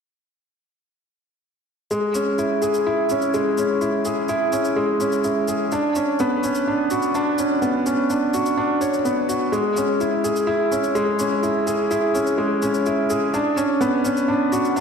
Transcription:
1.91 2.13 G#3 medium
1.91 shaker soft
2.15 2.37 C#4 medium
2.15 shaker soft
2.38 2.61 E4 medium
2.38 shaker soft
2.62 2.85 G#4 medium
2.62 shaker soft
2.74 shaker soft
2.87 3.09 E4 medium
3.09 3.33 C#4 medium
3.09 shaker soft
3.22 shaker soft
3.34 3.56 G#3 medium
3.34 shaker soft
3.58 3.80 C#4 medium
3.58 shaker medium
3.81 4.04 E4 medium
3.81 shaker soft
4.05 4.28 G#4 medium
4.05 shaker soft
4.28 4.52 E4 medium
4.28 shaker soft
4.52 4.75 C#4 medium
4.52 shaker medium
4.65 shaker soft
4.76 4.99 G#3 medium
5.00 5.23 C#4 medium
5.00 shaker soft
5.12 shaker soft
5.24 5.47 E4 medium
5.24 shaker soft
5.48 5.71 G#4 medium
5.48 shaker medium
5.72 5.95 D4 medium
5.72 shaker soft
5.95 6.18 C#4 medium
5.95 shaker medium
6.19 6.42 B3 medium
6.19 shaker soft
6.43 6.66 C#4 medium
6.43 shaker medium
6.55 shaker soft
6.67 6.90 D4 medium
6.91 7.13 F#4 medium
6.91 shaker medium
7.02 shaker soft
7.15 7.37 D4 medium
7.15 shaker soft
7.38 7.61 C#4 medium
7.38 shaker medium
7.62 7.85 B3 medium
7.62 shaker soft
7.86 8.09 C#4 medium
7.86 shaker medium
8.10 8.33 D4 medium
8.10 shaker soft
8.34 8.56 F#4 medium
8.34 shaker medium
8.46 shaker soft
8.57 8.80 D4 medium
8.81 8.95 C#5 medium
8.81 shaker medium
8.94 shaker soft
9.05 9.28 B3 medium
9.05 shaker soft
9.29 9.51 F#4 medium
9.29 shaker medium
9.52 9.75 G#3 medium
9.52 shaker soft
9.77 9.99 C#4 medium
9.77 shaker medium
10.01 10.23 E4 medium
10.01 shaker soft
10.24 10.47 G#4 medium
10.24 shaker medium
10.36 shaker soft
10.47 10.70 E4 medium
10.71 10.94 C#4 medium
10.71 shaker soft
10.84 shaker soft
10.95 11.18 G#3 medium
10.95 shaker soft
11.19 11.42 C#4 medium
11.19 shaker medium
11.43 11.66 E4 medium
11.43 shaker soft
11.67 11.89 G#4 medium
11.67 shaker soft
11.91 12.13 E4 medium
11.91 shaker soft
12.14 12.37 C#4 medium
12.14 shaker medium
12.27 shaker soft
12.38 12.61 G#3 medium
12.62 12.85 C#4 medium
12.62 shaker soft
12.74 shaker soft
12.86 13.09 E4 medium
12.86 shaker soft
13.10 13.33 G#4 medium
13.10 shaker medium
13.34 13.56 D4 medium
13.34 shaker soft
13.57 13.80 C#4 medium
13.57 shaker soft
13.81 14.04 B3 medium
13.81 shaker soft
14.04 14.27 C#4 medium
14.04 shaker medium
14.17 shaker soft
14.28 14.51 D4 medium
14.52 14.75 F#4 medium
14.52 shaker medium
14.65 shaker soft
14.76 14.80 D4 medium
14.76 shaker soft

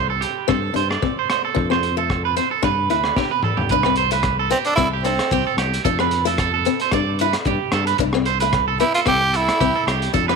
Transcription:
0.00 0.24 C2 medium
0.10 0.21 A4 medium
0.21 0.47 G4 medium
0.21 closed hi-hat medium
0.48 0.70 G2 medium
0.48 0.61 C4 medium
0.48 0.74 A4 medium
0.48 kick medium
0.48 cross-stick medium
0.74 0.96 G2 medium
0.74 0.88 D4 medium
0.74 0.90 C5 medium
0.74 closed hi-hat soft
0.90 1.16 D5 medium
0.90 cross-stick medium
1.02 1.16 C4 medium
1.02 kick medium
1.19 1.29 C5 medium
1.30 1.44 C5 medium
1.30 cross-stick medium
1.30 closed hi-hat soft
1.45 1.70 A4 medium
1.55 2.39 F2 medium
1.55 1.62 D4 medium
1.55 kick medium
1.70 1.84 C4 medium
1.70 1.96 C5 medium
1.70 cross-stick medium
1.83 closed hi-hat soft
1.97 2.11 A3 medium
1.97 2.23 A4 medium
2.10 kick medium
2.10 cross-stick medium
2.25 2.36 B4 medium
2.37 2.50 C4 medium
2.37 2.51 C5 medium
2.37 closed hi-hat soft
2.51 2.63 A4 medium
2.63 2.89 G2 medium
2.63 2.76 D4 medium
2.63 2.89 B4 medium
2.63 kick medium
2.63 cross-stick medium
2.89 3.10 D2 medium
2.89 3.04 E4 medium
2.89 3.16 B4 medium
2.89 closed hi-hat soft
3.04 cross-stick medium
3.16 3.31 D4 medium
3.16 3.31 G4 medium
3.16 kick medium
3.16 snare soft
3.31 3.43 B4 medium
3.43 3.58 A4 medium
3.43 mid tom medium
3.57 3.69 G4 medium
3.57 floor tom medium
3.69 4.53 C2 medium
3.69 3.79 D4 medium
3.69 3.96 B4 medium
3.69 kick medium
3.69 closed hi-hat soft
3.83 3.99 C4 medium
3.83 cross-stick medium
3.96 4.11 C5 medium
3.96 closed hi-hat soft
4.11 4.25 A3 medium
4.11 4.38 B4 medium
4.11 closed hi-hat medium
4.23 kick medium
4.23 cross-stick medium
4.23 closed hi-hat soft
4.39 4.51 A4 medium
4.50 4.64 B3 medium
4.50 4.58 C4 medium
4.50 4.66 G4 medium
4.50 closed hi-hat soft
4.65 4.75 D4 medium
4.65 4.92 A4 medium
4.65 closed hi-hat soft
4.76 5.19 C2 medium
4.76 4.91 C4 medium
4.76 4.88 E4 loud
4.76 kick medium
4.76 cross-stick medium
4.76 closed hi-hat soft
4.93 5.05 G4 medium
5.03 5.54 C4 medium
5.03 5.18 D4 medium
5.03 5.31 A4 medium
5.03 closed hi-hat medium
5.19 cross-stick medium
5.19 closed hi-hat soft
5.31 5.43 C2 medium
5.31 5.45 C4 medium
5.31 5.46 G4 medium
5.31 kick medium
5.31 closed hi-hat soft
5.47 5.58 A4 medium
5.57 5.78 C2 medium
5.57 5.84 G4 medium
5.57 cross-stick medium
5.57 closed hi-hat medium
5.74 closed hi-hat soft
5.85 6.67 F2 medium
5.85 5.93 D4 medium
5.85 5.99 A4 medium
5.85 kick medium
5.85 closed hi-hat soft
5.99 6.13 C4 medium
5.99 6.25 B4 medium
5.99 cross-stick medium
6.11 closed hi-hat soft
6.25 6.39 A3 medium
6.25 6.38 A4 medium
6.25 closed hi-hat soft
6.38 6.53 A4 medium
6.38 kick medium
6.38 cross-stick medium
6.38 closed hi-hat soft
6.54 6.79 A4 medium
6.65 6.80 C4 medium
6.65 closed hi-hat soft
6.80 6.93 C5 medium
6.80 closed hi-hat soft
6.91 7.34 G2 medium
6.91 7.06 D4 medium
6.91 7.19 D5 medium
6.91 kick medium
6.91 cross-stick medium
6.91 closed hi-hat soft
7.19 7.34 E4 medium
7.19 7.34 B4 medium
7.19 closed hi-hat medium
7.33 cross-stick medium
7.33 closed hi-hat soft
7.45 7.57 G2 medium
7.45 7.60 D4 medium
7.45 7.72 G4 medium
7.45 kick medium
7.45 closed hi-hat soft
7.72 7.93 G2 medium
7.72 7.87 A4 medium
7.72 cross-stick medium
7.72 closed hi-hat soft
7.87 7.97 B4 medium
7.87 closed hi-hat medium
7.98 8.82 C2 medium
7.98 8.07 D4 medium
7.98 muted clean electric guitar stroke medium
7.98 kick medium
7.98 closed hi-hat soft
8.13 8.28 C4 medium
8.13 cross-stick medium
8.25 8.40 C5 medium
8.25 closed hi-hat soft
8.40 8.55 A3 medium
8.40 8.66 B4 medium
8.40 closed hi-hat medium
8.53 kick medium
8.53 cross-stick medium
8.53 closed hi-hat soft
8.68 8.79 A4 medium
8.80 8.94 B3 medium
8.80 8.94 E4 medium
8.80 8.94 G4 medium
8.80 closed hi-hat medium
8.94 9.00 F4 medium
8.94 9.21 A4 medium
8.94 closed hi-hat medium
9.06 9.48 C2 medium
9.06 9.20 C4 medium
9.06 9.38 G4 loud
9.06 kick medium
9.06 cross-stick medium
9.06 closed hi-hat soft
9.21 9.33 G4 medium
9.33 9.89 E4 medium
9.33 9.59 A4 medium
9.33 closed hi-hat medium
9.49 cross-stick medium
9.49 closed hi-hat soft
9.60 9.72 C2 medium
9.60 9.74 C4 medium
9.60 9.74 G4 medium
9.60 kick medium
9.60 closed hi-hat soft
9.76 9.87 A4 medium
9.87 10.08 C2 medium
9.87 10.13 G4 medium
9.87 cross-stick medium
9.87 closed hi-hat medium
10.02 closed hi-hat soft
10.14 10.36 F2 medium
10.14 10.21 D4 medium
10.14 10.28 A4 medium
10.14 kick medium
10.14 closed hi-hat soft
10.28 10.36 C4 medium
10.28 10.36 B4 medium
10.28 cross-stick medium

